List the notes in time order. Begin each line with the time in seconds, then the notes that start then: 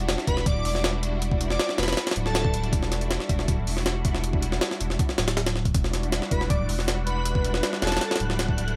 Already playing: E1 G3 D4 E4 F#4
0.09 snare, closed hi-hat
0.18 snare
0.27 E1 B4, kick, closed hi-hat
0.37 snare
0.46 D1 D5, kick, closed hi-hat
0.56 D5
0.65 E1 G3 D4 E4 F#4 D5, open hi-hat
0.75 D5, snare
0.84 snare, closed hi-hat
1.03 G3 D4 E4 F#4, closed hi-hat
1.21 G3 D4 E4 F#4, closed hi-hat
1.31 kick
1.41 closed hi-hat
1.50 D5, snare
1.59 D5, snare, closed hi-hat
1.69 snare
1.78 E1 B4, snare, closed hi-hat
1.83 snare, closed hi-hat
1.88 B4, snare, closed hi-hat
1.93 snare, closed hi-hat
1.97 snare, closed hi-hat
2.07 snare, closed hi-hat
2.11 snare, closed hi-hat
2.15 D1 G3 D4 E4 F#4, closed hi-hat
2.26 A4, snare
2.35 snare, closed hi-hat
2.45 kick
2.54 G3 D4 E4 F#4, closed hi-hat
2.64 closed hi-hat
2.73 E1 G3 D4 E4 F#4, kick, closed hi-hat
2.83 snare
2.92 snare, closed hi-hat
3.01 closed hi-hat
3.11 snare, closed hi-hat
3.20 snare
3.29 E1, kick, closed hi-hat
3.39 snare
3.48 D1, kick, closed hi-hat
3.66 E1 G3 D4 E4 F#4, open hi-hat
3.77 snare
3.86 snare, closed hi-hat
4.04 G3 D4 E4 F#4, kick, closed hi-hat
4.15 snare
4.23 G3 D4 E4 F#4, closed hi-hat
4.33 kick
4.42 closed hi-hat
4.52 snare
4.61 snare, closed hi-hat
4.71 snare
4.80 E1, closed hi-hat
4.90 snare
4.99 kick, closed hi-hat
5.09 snare
5.18 D1, snare, closed hi-hat
5.28 snare, closed hi-hat
5.37 snare, closed hi-hat
5.46 snare, closed hi-hat
5.56 snare
5.65 kick, closed hi-hat
5.75 E1 G3 D4 E4 F#4 F#6, kick, closed hi-hat
5.84 snare
5.93 snare, closed hi-hat
6.03 closed hi-hat
6.12 snare, closed hi-hat
6.22 snare
6.31 E1 B4, kick, closed hi-hat
6.41 snare
6.50 D1 D5, kick, closed hi-hat
6.59 D5
6.69 E1 G3 D4 E4 F#4, open hi-hat
6.79 snare
6.88 snare, closed hi-hat
7.06 G3 D4 E4 F#4 B4, closed hi-hat
7.25 G3 D4 E4 F#4, closed hi-hat
7.35 kick
7.45 closed hi-hat
7.54 snare
7.63 snare, closed hi-hat
7.73 snare
7.82 E1 A4, snare, closed hi-hat
7.87 snare, closed hi-hat
7.92 snare, closed hi-hat
7.97 snare, closed hi-hat
8.01 snare, closed hi-hat
8.11 snare, closed hi-hat
8.16 G3 D4 E4, snare, closed hi-hat
8.20 D1 F#4, closed hi-hat
8.30 snare
8.39 snare, closed hi-hat
8.49 kick
8.57 G3 D4 E4 F#4, closed hi-hat
8.68 closed hi-hat